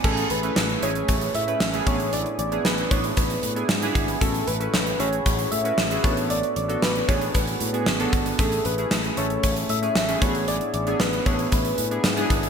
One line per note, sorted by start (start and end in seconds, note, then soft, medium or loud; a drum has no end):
0.00 0.37 A3 medium
0.00 0.16 G#5 medium
0.04 0.23 A1 medium
0.04 0.78 A2 medium
0.04 0.37 C#4 medium
0.04 0.37 E4 medium
0.04 0.37 G#4 medium
0.04 0.32 A4 medium
0.04 kick loud
0.04 crash medium
0.17 closed hi-hat soft
0.30 0.49 A1 medium
0.30 0.84 B4 medium
0.30 closed hi-hat medium
0.43 0.76 A3 medium
0.43 0.76 C#4 medium
0.43 0.76 E4 medium
0.43 0.76 B4 medium
0.43 closed hi-hat soft
0.56 0.75 A1 medium
0.56 snare loud
0.69 closed hi-hat soft
0.82 1.01 A1 medium
0.82 1.37 A3 medium
0.82 1.37 C#4 medium
0.82 1.37 E4 medium
0.82 1.37 G#4 medium
0.82 1.08 C#5 medium
0.82 closed hi-hat medium
0.95 closed hi-hat medium
1.08 1.27 A1 loud
1.08 1.37 C#5 loud
1.08 kick medium
1.08 closed hi-hat medium
1.21 closed hi-hat soft
1.35 1.53 A2 medium
1.35 1.89 E5 loud
1.35 closed hi-hat medium
1.47 1.69 A3 medium
1.47 1.69 C#4 medium
1.47 1.70 E4 medium
1.47 1.70 B4 medium
1.47 closed hi-hat soft
1.60 1.79 A1 medium
1.60 snare loud
1.73 1.87 A3 medium
1.73 1.87 C#4 medium
1.73 1.86 E4 medium
1.73 1.86 G#4 medium
1.73 closed hi-hat medium
1.86 2.24 A1 medium
1.86 2.61 A2 medium
1.86 2.41 B3 medium
1.86 2.41 D4 medium
1.86 2.41 E4 medium
1.86 2.42 G#4 medium
1.86 2.15 C#5 loud
1.86 kick loud
1.86 closed hi-hat medium
2.00 closed hi-hat soft
2.13 2.39 D5 loud
2.13 closed hi-hat medium
2.26 closed hi-hat soft
2.39 2.58 A1 medium
2.39 2.67 D5 medium
2.39 closed hi-hat medium
2.51 2.84 B3 medium
2.51 2.85 D4 medium
2.51 2.85 E4 medium
2.51 2.85 G#4 medium
2.51 closed hi-hat soft
2.65 2.84 A1 medium
2.65 2.93 B4 medium
2.65 snare loud
2.78 closed hi-hat soft
2.91 3.10 A1 medium
2.91 3.45 B3 medium
2.91 3.46 D4 medium
2.91 3.46 E4 medium
2.91 3.46 G#4 medium
2.91 3.19 C#5 medium
2.91 kick medium
2.91 closed hi-hat medium
3.04 closed hi-hat soft
3.17 3.36 A1 loud
3.17 3.95 B4 medium
3.17 kick medium
3.17 closed hi-hat medium
3.30 closed hi-hat soft
3.43 3.62 A2 medium
3.43 closed hi-hat medium
3.56 3.78 B3 medium
3.56 3.78 D4 medium
3.56 3.78 E4 medium
3.56 3.78 G#4 medium
3.56 closed hi-hat soft
3.69 3.88 G#2 medium
3.69 snare loud
3.82 4.15 B3 medium
3.82 4.15 D4 medium
3.82 4.15 E4 medium
3.82 4.15 G#4 medium
3.82 closed hi-hat medium
3.95 4.14 G#1 medium
3.95 kick medium
3.95 closed hi-hat medium
4.08 closed hi-hat medium
4.21 4.40 A1 loud
4.21 4.96 A2 medium
4.21 4.54 C#4 medium
4.21 4.54 E4 medium
4.21 4.54 F#4 medium
4.21 4.49 A4 medium
4.21 4.54 A4 medium
4.21 kick loud
4.21 closed hi-hat medium
4.34 closed hi-hat soft
4.47 4.66 A1 medium
4.47 5.01 B4 loud
4.47 closed hi-hat medium
4.60 4.93 C#4 medium
4.60 4.93 E4 medium
4.60 4.93 F#4 medium
4.60 4.94 B4 medium
4.60 closed hi-hat medium
4.74 4.93 A1 medium
4.74 snare loud
4.87 closed hi-hat soft
4.99 5.19 A1 medium
4.99 5.54 C#4 medium
4.99 5.54 E4 medium
4.99 5.54 F#4 medium
4.99 5.54 G#4 medium
4.99 5.25 C#5 medium
4.99 closed hi-hat medium
5.13 closed hi-hat medium
5.26 5.45 A1 loud
5.26 5.53 C#5 loud
5.26 kick medium
5.26 closed hi-hat medium
5.39 closed hi-hat soft
5.52 5.71 A2 medium
5.52 6.04 E5 loud
5.52 closed hi-hat medium
5.64 5.86 C#4 medium
5.64 5.87 E4 medium
5.64 5.87 F#4 medium
5.64 5.87 B4 medium
5.64 closed hi-hat soft
5.78 5.97 A1 medium
5.78 snare loud
5.90 6.04 C#4 medium
5.90 6.04 E4 medium
5.90 6.03 F#4 medium
5.90 6.04 G#4 medium
5.90 closed hi-hat medium
6.03 6.42 A1 medium
6.03 6.78 A2 medium
6.03 6.58 B3 medium
6.03 6.58 D4 medium
6.03 6.59 F#4 medium
6.03 6.59 A4 medium
6.03 6.32 C#5 loud
6.03 kick loud
6.03 closed hi-hat medium
6.17 closed hi-hat soft
6.30 6.56 D5 loud
6.30 closed hi-hat medium
6.43 closed hi-hat soft
6.56 6.75 A1 medium
6.56 6.84 D5 medium
6.56 closed hi-hat medium
6.68 7.02 B3 medium
6.68 7.02 D4 medium
6.68 7.02 F#4 medium
6.68 7.02 A4 medium
6.68 closed hi-hat medium
6.82 7.01 A1 medium
6.82 7.10 B4 medium
6.82 snare loud
6.96 closed hi-hat soft
7.08 7.27 A1 medium
7.08 7.63 B3 medium
7.08 7.63 D4 medium
7.08 7.63 F#4 medium
7.08 7.63 G#4 medium
7.08 7.36 C#5 medium
7.08 kick medium
7.08 closed hi-hat medium
7.21 closed hi-hat soft
7.35 7.54 A1 medium
7.35 8.13 B4 medium
7.35 kick medium
7.35 closed hi-hat medium
7.47 closed hi-hat soft
7.60 7.88 A2 medium
7.60 closed hi-hat medium
7.73 7.95 B3 medium
7.73 7.95 D4 medium
7.73 7.96 F#4 medium
7.73 7.96 G#4 medium
7.73 closed hi-hat soft
7.86 8.06 A1 medium
7.86 snare loud
7.99 8.32 B3 medium
7.99 8.32 D4 medium
7.99 8.33 F#4 medium
7.99 8.33 A4 medium
7.99 closed hi-hat medium
8.13 8.32 G#1 medium
8.13 kick medium
8.13 closed hi-hat medium
8.26 closed hi-hat soft
8.38 8.58 A1 medium
8.38 9.13 A2 medium
8.38 8.71 A3 medium
8.38 8.72 C#4 medium
8.38 8.72 E4 medium
8.38 8.72 G#4 medium
8.38 8.67 A4 medium
8.38 kick loud
8.38 closed hi-hat medium
8.52 closed hi-hat soft
8.65 8.84 A1 loud
8.65 9.19 B4 loud
8.65 closed hi-hat medium
8.78 9.11 A3 medium
8.78 9.11 C#4 medium
8.78 9.11 E4 medium
8.78 9.11 G#4 medium
8.78 closed hi-hat medium
8.91 9.10 A1 medium
8.91 snare loud
9.04 closed hi-hat soft
9.17 9.36 A1 medium
9.17 9.71 A3 medium
9.17 9.72 C#4 medium
9.17 9.72 E4 medium
9.17 9.72 A4 medium
9.17 9.43 C#5 medium
9.17 closed hi-hat medium
9.30 closed hi-hat soft
9.43 9.62 A1 medium
9.43 9.55 C#5 medium
9.43 kick medium
9.43 closed hi-hat medium
9.56 closed hi-hat soft
9.69 9.88 A2 medium
9.69 10.18 E5 loud
9.69 closed hi-hat medium
9.82 10.04 A3 medium
9.82 10.04 C#4 medium
9.82 10.04 E4 medium
9.82 10.05 G#4 medium
9.82 closed hi-hat soft
9.95 10.14 A1 medium
9.95 snare loud
10.08 10.21 A3 medium
10.08 10.21 C#4 medium
10.08 10.21 E4 medium
10.08 10.22 G#4 medium
10.08 closed hi-hat medium
10.21 10.59 A1 medium
10.21 10.96 A2 medium
10.21 10.76 B3 medium
10.21 10.76 D4 medium
10.21 10.76 E4 medium
10.21 10.28 F#4 medium
10.21 10.50 C#5 loud
10.21 kick loud
10.21 closed hi-hat medium
10.29 10.80 G#4 medium
10.35 closed hi-hat soft
10.48 10.74 D5 loud
10.48 closed hi-hat medium
10.61 closed hi-hat soft
10.74 10.93 A1 medium
10.74 11.02 D5 medium
10.74 closed hi-hat medium
10.87 11.19 B3 medium
10.87 11.20 D4 medium
10.87 11.20 E4 medium
10.87 11.20 G#4 medium
10.87 closed hi-hat medium
11.00 11.19 A1 medium
11.00 11.28 B4 medium
11.00 snare loud
11.13 closed hi-hat soft
11.26 11.45 A1 medium
11.26 11.80 B3 medium
11.26 11.80 D4 medium
11.26 11.81 E4 medium
11.26 11.81 G#4 medium
11.26 11.54 C#5 medium
11.26 kick medium
11.26 closed hi-hat medium
11.39 closed hi-hat soft
11.52 11.71 A1 loud
11.52 12.30 B4 medium
11.52 kick medium
11.52 closed hi-hat medium
11.65 closed hi-hat soft
11.78 11.97 A2 medium
11.78 closed hi-hat medium
11.91 12.13 B3 medium
11.91 12.13 D4 medium
11.91 12.13 E4 medium
11.91 12.13 G#4 medium
11.91 closed hi-hat soft
12.04 12.23 G#2 medium
12.04 snare loud
12.17 12.49 B3 medium
12.17 12.49 D4 medium
12.17 12.49 E4 medium
12.17 12.49 G#4 loud
12.17 closed hi-hat medium
12.30 12.49 G#1 medium
12.30 kick medium
12.30 closed hi-hat medium
12.43 closed hi-hat medium